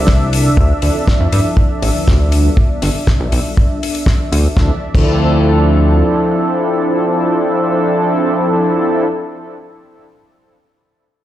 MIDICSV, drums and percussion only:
0, 0, Header, 1, 2, 480
1, 0, Start_track
1, 0, Key_signature, -1, "minor"
1, 0, Tempo, 500000
1, 550, Time_signature, 4, 2, 24, 8
1, 10791, End_track
2, 0, Start_track
2, 0, Title_t, "Drums"
2, 65, Note_on_c, 9, 38, 97
2, 77, Note_on_c, 9, 36, 95
2, 161, Note_off_c, 9, 38, 0
2, 173, Note_off_c, 9, 36, 0
2, 316, Note_on_c, 9, 46, 102
2, 412, Note_off_c, 9, 46, 0
2, 549, Note_on_c, 9, 36, 101
2, 645, Note_off_c, 9, 36, 0
2, 788, Note_on_c, 9, 46, 89
2, 884, Note_off_c, 9, 46, 0
2, 1032, Note_on_c, 9, 36, 97
2, 1036, Note_on_c, 9, 38, 117
2, 1128, Note_off_c, 9, 36, 0
2, 1132, Note_off_c, 9, 38, 0
2, 1272, Note_on_c, 9, 46, 90
2, 1368, Note_off_c, 9, 46, 0
2, 1505, Note_on_c, 9, 36, 91
2, 1601, Note_off_c, 9, 36, 0
2, 1751, Note_on_c, 9, 46, 92
2, 1847, Note_off_c, 9, 46, 0
2, 1993, Note_on_c, 9, 36, 100
2, 1995, Note_on_c, 9, 38, 100
2, 2089, Note_off_c, 9, 36, 0
2, 2091, Note_off_c, 9, 38, 0
2, 2228, Note_on_c, 9, 46, 92
2, 2324, Note_off_c, 9, 46, 0
2, 2467, Note_on_c, 9, 36, 100
2, 2563, Note_off_c, 9, 36, 0
2, 2708, Note_on_c, 9, 38, 36
2, 2709, Note_on_c, 9, 46, 96
2, 2804, Note_off_c, 9, 38, 0
2, 2805, Note_off_c, 9, 46, 0
2, 2950, Note_on_c, 9, 36, 101
2, 2951, Note_on_c, 9, 38, 118
2, 3046, Note_off_c, 9, 36, 0
2, 3047, Note_off_c, 9, 38, 0
2, 3189, Note_on_c, 9, 46, 86
2, 3285, Note_off_c, 9, 46, 0
2, 3431, Note_on_c, 9, 36, 92
2, 3527, Note_off_c, 9, 36, 0
2, 3677, Note_on_c, 9, 46, 88
2, 3773, Note_off_c, 9, 46, 0
2, 3789, Note_on_c, 9, 46, 59
2, 3885, Note_off_c, 9, 46, 0
2, 3901, Note_on_c, 9, 36, 111
2, 3906, Note_on_c, 9, 38, 104
2, 3997, Note_off_c, 9, 36, 0
2, 4002, Note_off_c, 9, 38, 0
2, 4152, Note_on_c, 9, 46, 99
2, 4248, Note_off_c, 9, 46, 0
2, 4384, Note_on_c, 9, 36, 104
2, 4387, Note_on_c, 9, 38, 87
2, 4480, Note_off_c, 9, 36, 0
2, 4483, Note_off_c, 9, 38, 0
2, 4748, Note_on_c, 9, 36, 107
2, 4752, Note_on_c, 9, 49, 80
2, 4844, Note_off_c, 9, 36, 0
2, 4848, Note_off_c, 9, 49, 0
2, 10791, End_track
0, 0, End_of_file